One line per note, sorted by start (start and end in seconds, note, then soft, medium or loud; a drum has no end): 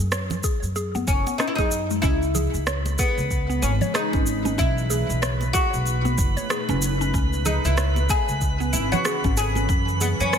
0.00 0.39 F#2 medium
0.12 0.23 C#5 medium
0.12 cross-stick loud
0.12 shaker soft
0.30 muted conga medium
0.30 high conga medium
0.30 low conga medium
0.30 shaker soft
0.44 0.62 G#4 medium
0.44 kick medium
0.44 shaker medium
0.62 1.03 F#2 medium
0.62 shaker soft
0.76 0.93 G#4 medium
0.76 muted conga soft
0.76 shaker soft
0.95 1.07 B3 medium
0.95 high conga medium
0.95 shaker soft
1.07 1.22 F#1 medium
1.07 1.38 C#4 medium
1.07 kick loud
1.07 shaker medium
1.27 1.38 B3 medium
1.27 muted conga medium
1.27 shaker soft
1.38 1.58 C#4 medium
1.38 1.47 D#4 medium
1.38 cross-stick medium
1.38 shaker soft
1.47 1.55 E4 medium
1.55 1.99 F#2 medium
1.55 2.01 D#4 medium
1.55 1.71 G#4 medium
1.55 kick medium
1.55 muted conga medium
1.55 high conga medium
1.55 shaker soft
1.71 shaker medium
1.90 2.03 G#3 medium
1.90 shaker soft
2.02 2.48 C#2 medium
2.02 4.58 C#3 medium
2.02 2.21 C#4 medium
2.02 2.62 E4 loud
2.02 10.38 B5 medium
2.02 kick loud
2.02 shaker soft
2.16 4.58 G#3 medium
2.22 shaker soft
2.35 2.53 G#4 medium
2.35 10.38 B4 loud
2.35 low conga medium
2.35 shaker medium
2.54 2.94 C#2 medium
2.54 shaker soft
2.60 4.59 E3 medium
2.67 2.78 C#5 medium
2.67 cross-stick loud
2.67 shaker soft
2.86 muted conga medium
2.86 high conga medium
2.86 shaker soft
2.99 3.65 B3 medium
2.99 3.17 G#4 medium
2.99 kick loud
2.99 shaker medium
3.17 3.58 C#2 medium
3.17 shaker soft
3.31 kick medium
3.31 shaker soft
3.49 3.62 B3 medium
3.49 shaker soft
3.62 3.77 G#1 medium
3.62 3.71 C#4 medium
3.62 shaker medium
3.81 3.93 C#5 medium
3.81 low conga medium
3.81 shaker soft
3.94 4.58 D#4 medium
3.94 4.11 G#4 medium
3.94 cross-stick loud
3.94 shaker soft
4.13 4.54 G#1 medium
4.13 4.26 C#4 medium
4.13 kick loud
4.13 muted conga medium
4.13 shaker soft
4.26 shaker medium
4.45 4.57 C#4 medium
4.45 high conga medium
4.45 shaker soft
4.58 5.03 B1 medium
4.58 7.14 B2 medium
4.58 4.76 C#4 medium
4.58 5.18 E4 loud
4.58 kick loud
4.58 shaker soft
4.78 shaker soft
4.90 5.08 G#4 medium
4.90 high conga medium
4.90 shaker medium
4.98 7.14 A3 medium
5.09 5.50 B1 medium
5.09 shaker soft
5.20 7.14 D#4 medium
5.20 5.33 C#5 medium
5.20 cross-stick loud
5.20 shaker soft
5.41 muted conga soft
5.41 high conga medium
5.41 shaker soft
5.53 6.77 F#4 loud
5.53 5.72 G#4 medium
5.53 kick loud
5.53 shaker medium
5.73 6.14 B1 medium
5.73 shaker soft
5.86 muted conga soft
5.86 shaker soft
6.05 6.17 B3 medium
6.05 high conga medium
6.05 shaker soft
6.18 6.33 F#1 medium
6.18 kick loud
6.18 shaker medium
6.37 6.48 C#5 medium
6.37 muted conga soft
6.37 shaker soft
6.50 6.67 G#4 medium
6.50 cross-stick loud
6.50 shaker soft
6.69 7.09 F#1 medium
6.69 6.81 C#4 medium
6.69 muted conga medium
6.69 shaker soft
6.82 shaker medium
7.01 7.12 C#4 medium
7.01 shaker soft
7.14 7.58 C#2 medium
7.14 9.69 C#3 medium
7.14 7.32 C#4 medium
7.14 kick loud
7.14 shaker soft
7.33 shaker soft
7.45 7.65 D#4 medium
7.45 7.64 G#4 medium
7.45 low conga medium
7.45 shaker medium
7.56 10.38 C#4 medium
7.64 8.05 C#2 medium
7.64 8.06 E4 medium
7.64 shaker soft
7.77 10.38 E3 medium
7.77 7.89 C#5 medium
7.77 cross-stick loud
7.77 shaker soft
7.96 muted conga soft
7.96 high conga medium
7.96 shaker soft
8.09 8.28 G#4 medium
8.09 8.40 G#4 medium
8.09 kick loud
8.09 shaker medium
8.28 8.69 C#2 medium
8.28 shaker soft
8.41 kick medium
8.41 shaker soft
8.60 8.73 B3 medium
8.60 shaker soft
8.73 8.88 G#1 medium
8.73 8.91 E4 medium
8.73 shaker medium
8.92 9.34 F#4 medium
8.92 9.04 C#5 medium
8.92 low conga medium
8.92 shaker soft
9.05 9.22 G#4 medium
9.05 cross-stick loud
9.05 shaker soft
9.24 9.65 G#1 medium
9.24 9.36 C#4 medium
9.24 kick loud
9.24 muted conga medium
9.24 shaker soft
9.37 9.67 G#4 medium
9.37 shaker medium
9.55 9.68 C#4 medium
9.55 high conga medium
9.55 shaker soft
9.69 10.13 F#2 medium
9.69 10.38 F#3 medium
9.69 9.87 C#4 medium
9.69 kick loud
9.69 shaker soft
9.88 shaker soft
10.01 10.07 B3 medium
10.01 10.19 G#4 medium
10.01 high conga medium
10.01 shaker medium
10.20 10.38 F#2 medium
10.20 10.38 C#4 medium
10.20 shaker soft
10.33 10.38 C#5 medium
10.33 cross-stick medium
10.33 shaker soft